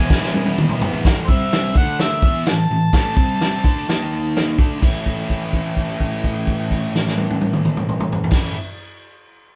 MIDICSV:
0, 0, Header, 1, 4, 480
1, 0, Start_track
1, 0, Key_signature, 3, "major"
1, 0, Tempo, 473186
1, 1056, Time_signature, 4, 2, 24, 8
1, 9694, End_track
2, 0, Start_track
2, 0, Title_t, "Harmonica"
2, 0, Program_c, 0, 22
2, 0, Note_on_c, 0, 80, 120
2, 531, Note_off_c, 0, 80, 0
2, 1258, Note_on_c, 0, 72, 60
2, 1303, Note_on_c, 0, 76, 85
2, 1318, Note_off_c, 0, 72, 0
2, 1776, Note_off_c, 0, 76, 0
2, 1792, Note_on_c, 0, 78, 102
2, 2005, Note_off_c, 0, 78, 0
2, 2035, Note_on_c, 0, 76, 96
2, 2468, Note_off_c, 0, 76, 0
2, 2535, Note_on_c, 0, 81, 100
2, 4390, Note_off_c, 0, 81, 0
2, 9694, End_track
3, 0, Start_track
3, 0, Title_t, "Overdriven electric guitar"
3, 0, Program_c, 1, 29
3, 0, Note_on_c, 1, 47, 96
3, 0, Note_on_c, 1, 52, 100
3, 0, Note_on_c, 1, 56, 96
3, 0, Note_on_c, 1, 59, 94
3, 0, Note_on_c, 1, 64, 99
3, 103, Note_off_c, 1, 47, 0
3, 110, Note_off_c, 1, 52, 0
3, 110, Note_on_c, 1, 40, 96
3, 116, Note_on_c, 1, 47, 98
3, 120, Note_off_c, 1, 56, 0
3, 122, Note_off_c, 1, 59, 0
3, 122, Note_on_c, 1, 52, 107
3, 128, Note_off_c, 1, 64, 0
3, 133, Note_on_c, 1, 56, 105
3, 134, Note_on_c, 1, 59, 118
3, 140, Note_on_c, 1, 64, 110
3, 324, Note_off_c, 1, 40, 0
3, 325, Note_off_c, 1, 47, 0
3, 334, Note_off_c, 1, 52, 0
3, 336, Note_on_c, 1, 40, 94
3, 338, Note_on_c, 1, 47, 91
3, 346, Note_on_c, 1, 52, 98
3, 349, Note_off_c, 1, 56, 0
3, 353, Note_off_c, 1, 59, 0
3, 358, Note_off_c, 1, 64, 0
3, 361, Note_on_c, 1, 56, 86
3, 365, Note_on_c, 1, 59, 92
3, 370, Note_on_c, 1, 64, 103
3, 565, Note_off_c, 1, 40, 0
3, 574, Note_off_c, 1, 47, 0
3, 578, Note_on_c, 1, 40, 108
3, 579, Note_off_c, 1, 52, 0
3, 586, Note_on_c, 1, 47, 95
3, 591, Note_on_c, 1, 52, 106
3, 592, Note_off_c, 1, 56, 0
3, 603, Note_off_c, 1, 59, 0
3, 604, Note_on_c, 1, 56, 99
3, 607, Note_off_c, 1, 64, 0
3, 615, Note_on_c, 1, 59, 103
3, 619, Note_on_c, 1, 64, 104
3, 814, Note_off_c, 1, 40, 0
3, 820, Note_off_c, 1, 47, 0
3, 823, Note_off_c, 1, 52, 0
3, 826, Note_on_c, 1, 40, 79
3, 832, Note_on_c, 1, 47, 87
3, 836, Note_off_c, 1, 56, 0
3, 836, Note_off_c, 1, 59, 0
3, 836, Note_on_c, 1, 52, 89
3, 848, Note_off_c, 1, 64, 0
3, 848, Note_on_c, 1, 56, 83
3, 848, Note_on_c, 1, 59, 94
3, 860, Note_on_c, 1, 64, 88
3, 1046, Note_off_c, 1, 40, 0
3, 1049, Note_off_c, 1, 47, 0
3, 1051, Note_off_c, 1, 52, 0
3, 1057, Note_off_c, 1, 56, 0
3, 1057, Note_off_c, 1, 59, 0
3, 1060, Note_on_c, 1, 45, 87
3, 1063, Note_off_c, 1, 64, 0
3, 1071, Note_on_c, 1, 52, 93
3, 1076, Note_on_c, 1, 57, 101
3, 1289, Note_off_c, 1, 45, 0
3, 1295, Note_off_c, 1, 52, 0
3, 1297, Note_off_c, 1, 57, 0
3, 1301, Note_on_c, 1, 48, 90
3, 1319, Note_on_c, 1, 55, 94
3, 1322, Note_on_c, 1, 60, 98
3, 1763, Note_off_c, 1, 48, 0
3, 1767, Note_on_c, 1, 50, 91
3, 1769, Note_off_c, 1, 55, 0
3, 1773, Note_on_c, 1, 57, 97
3, 1776, Note_off_c, 1, 60, 0
3, 1780, Note_on_c, 1, 62, 107
3, 2240, Note_off_c, 1, 50, 0
3, 2243, Note_off_c, 1, 57, 0
3, 2246, Note_off_c, 1, 62, 0
3, 2265, Note_on_c, 1, 52, 94
3, 2273, Note_on_c, 1, 59, 88
3, 2277, Note_on_c, 1, 64, 96
3, 2490, Note_off_c, 1, 52, 0
3, 2493, Note_off_c, 1, 59, 0
3, 2495, Note_off_c, 1, 64, 0
3, 2495, Note_on_c, 1, 45, 61
3, 2501, Note_on_c, 1, 52, 75
3, 2683, Note_off_c, 1, 45, 0
3, 2686, Note_off_c, 1, 52, 0
3, 2741, Note_on_c, 1, 45, 58
3, 2744, Note_on_c, 1, 52, 75
3, 2926, Note_off_c, 1, 45, 0
3, 2928, Note_off_c, 1, 52, 0
3, 2970, Note_on_c, 1, 45, 105
3, 2975, Note_on_c, 1, 52, 92
3, 2983, Note_on_c, 1, 57, 91
3, 3194, Note_off_c, 1, 45, 0
3, 3198, Note_on_c, 1, 48, 93
3, 3203, Note_off_c, 1, 52, 0
3, 3207, Note_on_c, 1, 55, 92
3, 3208, Note_off_c, 1, 57, 0
3, 3221, Note_on_c, 1, 60, 116
3, 3675, Note_off_c, 1, 48, 0
3, 3680, Note_off_c, 1, 55, 0
3, 3687, Note_off_c, 1, 60, 0
3, 3689, Note_on_c, 1, 50, 88
3, 3692, Note_on_c, 1, 57, 86
3, 3703, Note_on_c, 1, 62, 103
3, 3921, Note_off_c, 1, 50, 0
3, 3922, Note_off_c, 1, 57, 0
3, 3928, Note_off_c, 1, 62, 0
3, 3928, Note_on_c, 1, 51, 84
3, 3937, Note_on_c, 1, 58, 90
3, 3938, Note_on_c, 1, 63, 95
3, 4641, Note_off_c, 1, 51, 0
3, 4646, Note_off_c, 1, 58, 0
3, 4646, Note_off_c, 1, 63, 0
3, 4647, Note_on_c, 1, 50, 89
3, 4656, Note_on_c, 1, 57, 82
3, 4669, Note_on_c, 1, 62, 97
3, 4860, Note_off_c, 1, 50, 0
3, 4865, Note_on_c, 1, 45, 89
3, 4882, Note_off_c, 1, 57, 0
3, 4887, Note_on_c, 1, 52, 97
3, 4890, Note_off_c, 1, 62, 0
3, 4894, Note_on_c, 1, 57, 98
3, 4902, Note_on_c, 1, 61, 94
3, 4902, Note_on_c, 1, 64, 97
3, 8415, Note_off_c, 1, 45, 0
3, 8437, Note_off_c, 1, 52, 0
3, 8444, Note_off_c, 1, 57, 0
3, 8446, Note_on_c, 1, 45, 88
3, 8450, Note_on_c, 1, 52, 93
3, 8452, Note_off_c, 1, 61, 0
3, 8453, Note_off_c, 1, 64, 0
3, 8460, Note_on_c, 1, 57, 89
3, 8472, Note_on_c, 1, 61, 95
3, 8483, Note_on_c, 1, 64, 103
3, 8667, Note_off_c, 1, 45, 0
3, 8670, Note_off_c, 1, 52, 0
3, 8674, Note_off_c, 1, 57, 0
3, 8680, Note_off_c, 1, 61, 0
3, 8686, Note_off_c, 1, 64, 0
3, 9694, End_track
4, 0, Start_track
4, 0, Title_t, "Drums"
4, 105, Note_on_c, 9, 36, 108
4, 117, Note_on_c, 9, 38, 75
4, 206, Note_off_c, 9, 36, 0
4, 219, Note_off_c, 9, 38, 0
4, 236, Note_on_c, 9, 38, 66
4, 337, Note_off_c, 9, 38, 0
4, 346, Note_on_c, 9, 48, 87
4, 447, Note_off_c, 9, 48, 0
4, 464, Note_on_c, 9, 48, 75
4, 566, Note_off_c, 9, 48, 0
4, 589, Note_on_c, 9, 47, 98
4, 691, Note_off_c, 9, 47, 0
4, 700, Note_on_c, 9, 45, 85
4, 801, Note_off_c, 9, 45, 0
4, 823, Note_on_c, 9, 43, 119
4, 925, Note_off_c, 9, 43, 0
4, 945, Note_on_c, 9, 43, 99
4, 1046, Note_off_c, 9, 43, 0
4, 1063, Note_on_c, 9, 36, 108
4, 1066, Note_on_c, 9, 46, 51
4, 1075, Note_on_c, 9, 38, 119
4, 1164, Note_off_c, 9, 36, 0
4, 1167, Note_off_c, 9, 46, 0
4, 1176, Note_off_c, 9, 38, 0
4, 1301, Note_on_c, 9, 36, 101
4, 1402, Note_off_c, 9, 36, 0
4, 1539, Note_on_c, 9, 46, 54
4, 1549, Note_on_c, 9, 38, 103
4, 1641, Note_off_c, 9, 46, 0
4, 1650, Note_off_c, 9, 38, 0
4, 1777, Note_on_c, 9, 36, 114
4, 1879, Note_off_c, 9, 36, 0
4, 2012, Note_on_c, 9, 46, 61
4, 2021, Note_on_c, 9, 38, 112
4, 2113, Note_off_c, 9, 46, 0
4, 2122, Note_off_c, 9, 38, 0
4, 2255, Note_on_c, 9, 36, 99
4, 2356, Note_off_c, 9, 36, 0
4, 2492, Note_on_c, 9, 46, 62
4, 2501, Note_on_c, 9, 38, 117
4, 2594, Note_off_c, 9, 46, 0
4, 2603, Note_off_c, 9, 38, 0
4, 2971, Note_on_c, 9, 46, 55
4, 2972, Note_on_c, 9, 36, 106
4, 2980, Note_on_c, 9, 38, 107
4, 3072, Note_off_c, 9, 46, 0
4, 3073, Note_off_c, 9, 36, 0
4, 3081, Note_off_c, 9, 38, 0
4, 3211, Note_on_c, 9, 36, 102
4, 3312, Note_off_c, 9, 36, 0
4, 3452, Note_on_c, 9, 46, 60
4, 3461, Note_on_c, 9, 38, 109
4, 3553, Note_off_c, 9, 46, 0
4, 3562, Note_off_c, 9, 38, 0
4, 3695, Note_on_c, 9, 36, 97
4, 3796, Note_off_c, 9, 36, 0
4, 3940, Note_on_c, 9, 46, 57
4, 3949, Note_on_c, 9, 38, 114
4, 4042, Note_off_c, 9, 46, 0
4, 4051, Note_off_c, 9, 38, 0
4, 4422, Note_on_c, 9, 46, 52
4, 4432, Note_on_c, 9, 38, 111
4, 4524, Note_off_c, 9, 46, 0
4, 4533, Note_off_c, 9, 38, 0
4, 4652, Note_on_c, 9, 36, 107
4, 4753, Note_off_c, 9, 36, 0
4, 4894, Note_on_c, 9, 36, 102
4, 4898, Note_on_c, 9, 49, 82
4, 4995, Note_off_c, 9, 36, 0
4, 4999, Note_off_c, 9, 49, 0
4, 5134, Note_on_c, 9, 36, 58
4, 5140, Note_on_c, 9, 49, 42
4, 5236, Note_off_c, 9, 36, 0
4, 5242, Note_off_c, 9, 49, 0
4, 5262, Note_on_c, 9, 57, 40
4, 5363, Note_off_c, 9, 57, 0
4, 5375, Note_on_c, 9, 36, 61
4, 5386, Note_on_c, 9, 49, 44
4, 5477, Note_off_c, 9, 36, 0
4, 5488, Note_off_c, 9, 49, 0
4, 5497, Note_on_c, 9, 57, 48
4, 5599, Note_off_c, 9, 57, 0
4, 5611, Note_on_c, 9, 36, 66
4, 5618, Note_on_c, 9, 49, 44
4, 5713, Note_off_c, 9, 36, 0
4, 5719, Note_off_c, 9, 49, 0
4, 5742, Note_on_c, 9, 57, 47
4, 5843, Note_off_c, 9, 57, 0
4, 5852, Note_on_c, 9, 36, 62
4, 5853, Note_on_c, 9, 49, 45
4, 5953, Note_off_c, 9, 36, 0
4, 5955, Note_off_c, 9, 49, 0
4, 5977, Note_on_c, 9, 57, 47
4, 6079, Note_off_c, 9, 57, 0
4, 6091, Note_on_c, 9, 36, 64
4, 6094, Note_on_c, 9, 49, 46
4, 6193, Note_off_c, 9, 36, 0
4, 6196, Note_off_c, 9, 49, 0
4, 6218, Note_on_c, 9, 57, 50
4, 6320, Note_off_c, 9, 57, 0
4, 6332, Note_on_c, 9, 36, 64
4, 6339, Note_on_c, 9, 49, 48
4, 6433, Note_off_c, 9, 36, 0
4, 6440, Note_off_c, 9, 49, 0
4, 6448, Note_on_c, 9, 57, 50
4, 6549, Note_off_c, 9, 57, 0
4, 6566, Note_on_c, 9, 49, 49
4, 6567, Note_on_c, 9, 36, 64
4, 6667, Note_off_c, 9, 49, 0
4, 6668, Note_off_c, 9, 36, 0
4, 6688, Note_on_c, 9, 57, 49
4, 6789, Note_off_c, 9, 57, 0
4, 6807, Note_on_c, 9, 36, 59
4, 6815, Note_on_c, 9, 49, 51
4, 6909, Note_off_c, 9, 36, 0
4, 6916, Note_off_c, 9, 49, 0
4, 6929, Note_on_c, 9, 57, 52
4, 7030, Note_off_c, 9, 57, 0
4, 7055, Note_on_c, 9, 38, 83
4, 7156, Note_off_c, 9, 38, 0
4, 7177, Note_on_c, 9, 38, 84
4, 7278, Note_off_c, 9, 38, 0
4, 7281, Note_on_c, 9, 48, 89
4, 7383, Note_off_c, 9, 48, 0
4, 7409, Note_on_c, 9, 48, 92
4, 7511, Note_off_c, 9, 48, 0
4, 7519, Note_on_c, 9, 48, 95
4, 7620, Note_off_c, 9, 48, 0
4, 7640, Note_on_c, 9, 47, 93
4, 7742, Note_off_c, 9, 47, 0
4, 7762, Note_on_c, 9, 47, 94
4, 7863, Note_off_c, 9, 47, 0
4, 7882, Note_on_c, 9, 45, 97
4, 7983, Note_off_c, 9, 45, 0
4, 8005, Note_on_c, 9, 45, 96
4, 8106, Note_off_c, 9, 45, 0
4, 8119, Note_on_c, 9, 45, 104
4, 8221, Note_off_c, 9, 45, 0
4, 8242, Note_on_c, 9, 43, 104
4, 8343, Note_off_c, 9, 43, 0
4, 8358, Note_on_c, 9, 43, 105
4, 8428, Note_on_c, 9, 49, 93
4, 8437, Note_on_c, 9, 38, 98
4, 8438, Note_on_c, 9, 36, 106
4, 8460, Note_off_c, 9, 43, 0
4, 8529, Note_off_c, 9, 49, 0
4, 8538, Note_off_c, 9, 38, 0
4, 8539, Note_off_c, 9, 36, 0
4, 9694, End_track
0, 0, End_of_file